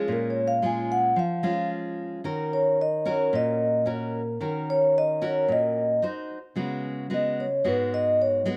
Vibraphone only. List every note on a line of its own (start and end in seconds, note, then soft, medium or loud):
0.12 0.28 A#4 medium
0.30 0.46 C#5 medium
0.48 0.63 F5 medium
0.66 0.90 G#5 medium
0.92 1.17 F#5 medium
1.19 1.68 F5 medium
2.53 2.78 C#5 medium
2.81 3.06 D#5 medium
3.07 3.32 C#5 medium
3.36 3.84 D#5 medium
4.70 4.95 C#5 medium
4.98 5.22 D#5 medium
5.25 5.49 C#5 medium
5.52 6.00 D#5 medium
7.14 7.38 D#5 medium
7.40 7.65 C#5 medium
7.68 7.92 B4 medium
7.94 8.19 D#5 loud
8.22 8.46 C#5 medium